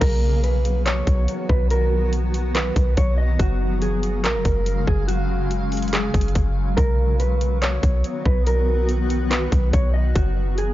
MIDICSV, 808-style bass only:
0, 0, Header, 1, 2, 480
1, 0, Start_track
1, 0, Tempo, 422535
1, 16, Time_signature, 4, 2, 24, 8
1, 12196, End_track
2, 0, Start_track
2, 0, Title_t, "808-style bass"
2, 0, Program_c, 0, 38
2, 16, Note_on_c, 0, 35, 111
2, 1171, Note_off_c, 0, 35, 0
2, 1216, Note_on_c, 0, 35, 101
2, 1447, Note_off_c, 0, 35, 0
2, 1697, Note_on_c, 0, 35, 99
2, 3091, Note_off_c, 0, 35, 0
2, 3136, Note_on_c, 0, 35, 103
2, 3367, Note_off_c, 0, 35, 0
2, 3378, Note_on_c, 0, 35, 114
2, 3838, Note_off_c, 0, 35, 0
2, 3856, Note_on_c, 0, 30, 108
2, 4816, Note_on_c, 0, 34, 100
2, 4833, Note_off_c, 0, 30, 0
2, 4936, Note_on_c, 0, 30, 102
2, 4953, Note_off_c, 0, 34, 0
2, 5050, Note_off_c, 0, 30, 0
2, 5056, Note_on_c, 0, 30, 101
2, 5517, Note_off_c, 0, 30, 0
2, 5537, Note_on_c, 0, 30, 102
2, 6931, Note_off_c, 0, 30, 0
2, 6977, Note_on_c, 0, 30, 102
2, 7207, Note_off_c, 0, 30, 0
2, 7219, Note_on_c, 0, 30, 112
2, 7678, Note_off_c, 0, 30, 0
2, 7696, Note_on_c, 0, 35, 113
2, 8851, Note_off_c, 0, 35, 0
2, 8896, Note_on_c, 0, 35, 101
2, 9127, Note_off_c, 0, 35, 0
2, 9378, Note_on_c, 0, 35, 106
2, 10771, Note_off_c, 0, 35, 0
2, 10816, Note_on_c, 0, 35, 101
2, 11047, Note_off_c, 0, 35, 0
2, 11058, Note_on_c, 0, 35, 112
2, 11518, Note_off_c, 0, 35, 0
2, 11536, Note_on_c, 0, 30, 104
2, 12196, Note_off_c, 0, 30, 0
2, 12196, End_track
0, 0, End_of_file